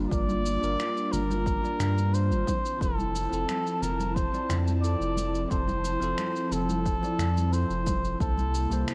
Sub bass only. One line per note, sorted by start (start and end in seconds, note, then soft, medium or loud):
0.11 0.58 G1 loud
0.63 0.76 G1 medium
1.13 1.59 G1 medium
1.80 2.32 G2 loud
2.31 2.45 G1 loud
2.81 3.27 F1 medium
3.32 3.46 F1 medium
3.82 4.28 F1 medium
4.49 4.96 F2 medium
5.00 5.46 F1 loud
5.51 5.97 F1 loud
6.01 6.15 F1 medium
6.51 6.98 F1 medium
7.19 7.65 F2 medium
7.69 8.16 F1 loud
8.20 8.67 C2 loud
8.71 8.85 C2 medium